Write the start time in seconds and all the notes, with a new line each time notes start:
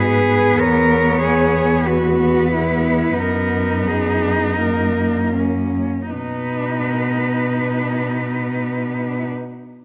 Already playing: G#2 B3
0.00 G#4 B4
0.60 E2 A#4 C#5
1.22 G#4
1.87 F#4 B4
2.53 E4
3.19 F#2 D#4 A#4
3.87 G#4
4.58 A#3 A#4
5.35 C#4
6.10 B2 B3 D#4 B4